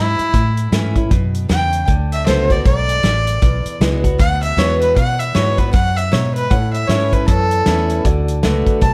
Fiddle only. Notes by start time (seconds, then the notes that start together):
Already playing: E4
1.49 G5
2.12 E5
2.26 C5
2.51 D5
2.66 D5
4.19 F#5
4.43 E5
4.58 C#5
4.81 B4
4.96 F#5
5.19 E5
5.35 C#5
5.58 B4
5.73 F#5
5.97 E5
6.12 C#5
6.35 B4
6.51 F#5
6.73 E5
6.87 C#5
7.13 B4
7.28 A4
8.81 A5